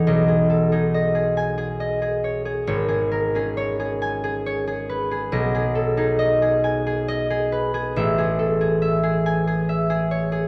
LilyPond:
<<
  \new Staff \with { instrumentName = "Harp" } { \time 3/4 \key b \mixolydian \tempo 4 = 69 << { gis''4. gis''4.~ | gis''4. gis''4.~ | gis''4. gis''4.~ | \key a \lydian gis''4. gis''4. | } \\ { <gis' dis''>16 gis'16 a'16 gis'16 dis''16 gis'8 gis'16 dis''16 gis'16 cis''16 gis'16 | cis''16 gis'16 ais'16 gis'16 cis''16 gis'8 gis'16 cis''16 gis'16 b'16 gis'16 | dis''16 gis'16 a'16 gis'16 dis''16 gis'8 gis'16 dis''16 gis'16 b'16 gis'16 | e''16 gis'16 a'16 gis'16 e''16 gis'8 gis'16 e''16 gis'16 cis''16 gis'16 | } >> }
  \new Staff \with { instrumentName = "Harp" } { \clef bass \time 3/4 \key b \mixolydian <b,, dis'>8. dis'2~ dis'16 | gis,,8. cis'2~ cis'16 | b,,8. dis'2~ dis'16 | \key a \lydian a,,2. | }
>>